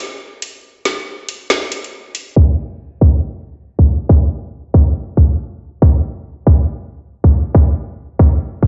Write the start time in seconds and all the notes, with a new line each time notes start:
0.42 closed hi-hat
0.85 snare, closed hi-hat
1.29 closed hi-hat
1.50 snare
1.72 closed hi-hat
1.84 closed hi-hat
2.15 closed hi-hat
2.36 kick, crash
3.01 kick
3.79 kick
4.09 kick
4.74 kick
5.17 kick
5.82 kick
6.47 kick
7.24 kick
7.55 kick
8.19 kick
8.63 kick